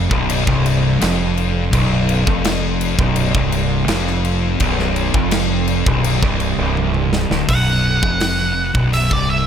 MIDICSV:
0, 0, Header, 1, 5, 480
1, 0, Start_track
1, 0, Tempo, 719424
1, 1154, Time_signature, 4, 2, 24, 8
1, 6316, End_track
2, 0, Start_track
2, 0, Title_t, "Lead electric guitar"
2, 0, Program_c, 0, 29
2, 5003, Note_on_c, 0, 78, 82
2, 5933, Note_off_c, 0, 78, 0
2, 5964, Note_on_c, 0, 76, 85
2, 6091, Note_off_c, 0, 76, 0
2, 6091, Note_on_c, 0, 74, 80
2, 6200, Note_off_c, 0, 74, 0
2, 6208, Note_on_c, 0, 76, 78
2, 6316, Note_off_c, 0, 76, 0
2, 6316, End_track
3, 0, Start_track
3, 0, Title_t, "Distorted electric guitar"
3, 0, Program_c, 1, 30
3, 61, Note_on_c, 1, 35, 109
3, 300, Note_off_c, 1, 35, 0
3, 306, Note_on_c, 1, 36, 120
3, 661, Note_off_c, 1, 36, 0
3, 664, Note_on_c, 1, 41, 120
3, 1139, Note_off_c, 1, 41, 0
3, 1142, Note_on_c, 1, 35, 116
3, 1500, Note_off_c, 1, 35, 0
3, 1511, Note_on_c, 1, 41, 107
3, 1985, Note_off_c, 1, 41, 0
3, 1994, Note_on_c, 1, 35, 104
3, 2226, Note_off_c, 1, 35, 0
3, 2230, Note_on_c, 1, 36, 104
3, 2584, Note_off_c, 1, 36, 0
3, 2587, Note_on_c, 1, 41, 118
3, 3062, Note_off_c, 1, 41, 0
3, 3068, Note_on_c, 1, 35, 107
3, 3423, Note_off_c, 1, 35, 0
3, 3437, Note_on_c, 1, 41, 113
3, 3907, Note_off_c, 1, 41, 0
3, 3924, Note_on_c, 1, 35, 99
3, 4151, Note_off_c, 1, 35, 0
3, 4162, Note_on_c, 1, 36, 112
3, 4390, Note_off_c, 1, 36, 0
3, 4412, Note_on_c, 1, 36, 113
3, 4875, Note_off_c, 1, 36, 0
3, 4881, Note_on_c, 1, 38, 93
3, 4990, Note_off_c, 1, 38, 0
3, 5001, Note_on_c, 1, 35, 105
3, 5350, Note_off_c, 1, 35, 0
3, 5354, Note_on_c, 1, 41, 102
3, 5827, Note_off_c, 1, 41, 0
3, 5830, Note_on_c, 1, 35, 95
3, 6066, Note_off_c, 1, 35, 0
3, 6076, Note_on_c, 1, 36, 99
3, 6316, Note_off_c, 1, 36, 0
3, 6316, End_track
4, 0, Start_track
4, 0, Title_t, "Fingered electric bass"
4, 0, Program_c, 2, 33
4, 73, Note_on_c, 2, 23, 93
4, 297, Note_off_c, 2, 23, 0
4, 317, Note_on_c, 2, 24, 100
4, 650, Note_off_c, 2, 24, 0
4, 678, Note_on_c, 2, 29, 87
4, 1129, Note_off_c, 2, 29, 0
4, 1156, Note_on_c, 2, 23, 94
4, 1489, Note_off_c, 2, 23, 0
4, 1515, Note_on_c, 2, 29, 97
4, 1967, Note_off_c, 2, 29, 0
4, 1995, Note_on_c, 2, 23, 95
4, 2217, Note_off_c, 2, 23, 0
4, 2235, Note_on_c, 2, 24, 91
4, 2568, Note_off_c, 2, 24, 0
4, 2586, Note_on_c, 2, 29, 95
4, 3042, Note_off_c, 2, 29, 0
4, 3076, Note_on_c, 2, 23, 94
4, 3409, Note_off_c, 2, 23, 0
4, 3432, Note_on_c, 2, 29, 95
4, 3885, Note_off_c, 2, 29, 0
4, 3915, Note_on_c, 2, 23, 96
4, 4137, Note_off_c, 2, 23, 0
4, 4152, Note_on_c, 2, 24, 101
4, 4375, Note_off_c, 2, 24, 0
4, 4389, Note_on_c, 2, 24, 97
4, 4845, Note_off_c, 2, 24, 0
4, 4870, Note_on_c, 2, 26, 88
4, 4983, Note_off_c, 2, 26, 0
4, 4994, Note_on_c, 2, 23, 96
4, 5329, Note_off_c, 2, 23, 0
4, 5356, Note_on_c, 2, 29, 90
4, 5809, Note_off_c, 2, 29, 0
4, 5840, Note_on_c, 2, 23, 92
4, 6061, Note_off_c, 2, 23, 0
4, 6079, Note_on_c, 2, 24, 86
4, 6316, Note_off_c, 2, 24, 0
4, 6316, End_track
5, 0, Start_track
5, 0, Title_t, "Drums"
5, 74, Note_on_c, 9, 36, 105
5, 140, Note_off_c, 9, 36, 0
5, 197, Note_on_c, 9, 49, 90
5, 264, Note_off_c, 9, 49, 0
5, 315, Note_on_c, 9, 36, 113
5, 382, Note_off_c, 9, 36, 0
5, 438, Note_on_c, 9, 49, 72
5, 505, Note_off_c, 9, 49, 0
5, 677, Note_on_c, 9, 49, 84
5, 684, Note_on_c, 9, 38, 103
5, 744, Note_off_c, 9, 49, 0
5, 750, Note_off_c, 9, 38, 0
5, 918, Note_on_c, 9, 49, 57
5, 984, Note_off_c, 9, 49, 0
5, 1155, Note_on_c, 9, 36, 107
5, 1155, Note_on_c, 9, 49, 82
5, 1221, Note_off_c, 9, 49, 0
5, 1222, Note_off_c, 9, 36, 0
5, 1394, Note_on_c, 9, 49, 66
5, 1461, Note_off_c, 9, 49, 0
5, 1515, Note_on_c, 9, 36, 96
5, 1582, Note_off_c, 9, 36, 0
5, 1631, Note_on_c, 9, 49, 80
5, 1638, Note_on_c, 9, 38, 115
5, 1698, Note_off_c, 9, 49, 0
5, 1705, Note_off_c, 9, 38, 0
5, 1874, Note_on_c, 9, 49, 60
5, 1941, Note_off_c, 9, 49, 0
5, 1993, Note_on_c, 9, 36, 115
5, 2060, Note_off_c, 9, 36, 0
5, 2107, Note_on_c, 9, 49, 80
5, 2173, Note_off_c, 9, 49, 0
5, 2233, Note_on_c, 9, 36, 105
5, 2300, Note_off_c, 9, 36, 0
5, 2351, Note_on_c, 9, 49, 60
5, 2417, Note_off_c, 9, 49, 0
5, 2589, Note_on_c, 9, 49, 77
5, 2596, Note_on_c, 9, 38, 114
5, 2656, Note_off_c, 9, 49, 0
5, 2662, Note_off_c, 9, 38, 0
5, 2716, Note_on_c, 9, 38, 33
5, 2783, Note_off_c, 9, 38, 0
5, 2833, Note_on_c, 9, 49, 57
5, 2900, Note_off_c, 9, 49, 0
5, 3068, Note_on_c, 9, 49, 69
5, 3073, Note_on_c, 9, 36, 96
5, 3134, Note_off_c, 9, 49, 0
5, 3139, Note_off_c, 9, 36, 0
5, 3196, Note_on_c, 9, 38, 35
5, 3263, Note_off_c, 9, 38, 0
5, 3310, Note_on_c, 9, 49, 60
5, 3376, Note_off_c, 9, 49, 0
5, 3431, Note_on_c, 9, 36, 103
5, 3498, Note_off_c, 9, 36, 0
5, 3544, Note_on_c, 9, 49, 79
5, 3551, Note_on_c, 9, 38, 113
5, 3611, Note_off_c, 9, 49, 0
5, 3618, Note_off_c, 9, 38, 0
5, 3787, Note_on_c, 9, 49, 59
5, 3854, Note_off_c, 9, 49, 0
5, 3913, Note_on_c, 9, 36, 114
5, 3980, Note_off_c, 9, 36, 0
5, 4032, Note_on_c, 9, 49, 85
5, 4099, Note_off_c, 9, 49, 0
5, 4154, Note_on_c, 9, 36, 105
5, 4221, Note_off_c, 9, 36, 0
5, 4270, Note_on_c, 9, 49, 60
5, 4337, Note_off_c, 9, 49, 0
5, 4518, Note_on_c, 9, 48, 65
5, 4585, Note_off_c, 9, 48, 0
5, 4633, Note_on_c, 9, 47, 65
5, 4699, Note_off_c, 9, 47, 0
5, 4756, Note_on_c, 9, 38, 92
5, 4823, Note_off_c, 9, 38, 0
5, 4879, Note_on_c, 9, 38, 88
5, 4945, Note_off_c, 9, 38, 0
5, 4994, Note_on_c, 9, 46, 61
5, 4995, Note_on_c, 9, 36, 107
5, 5060, Note_off_c, 9, 46, 0
5, 5062, Note_off_c, 9, 36, 0
5, 5356, Note_on_c, 9, 36, 103
5, 5423, Note_off_c, 9, 36, 0
5, 5474, Note_on_c, 9, 46, 56
5, 5480, Note_on_c, 9, 38, 112
5, 5540, Note_off_c, 9, 46, 0
5, 5547, Note_off_c, 9, 38, 0
5, 5837, Note_on_c, 9, 36, 110
5, 5904, Note_off_c, 9, 36, 0
5, 5959, Note_on_c, 9, 46, 58
5, 6026, Note_off_c, 9, 46, 0
5, 6079, Note_on_c, 9, 36, 106
5, 6146, Note_off_c, 9, 36, 0
5, 6316, End_track
0, 0, End_of_file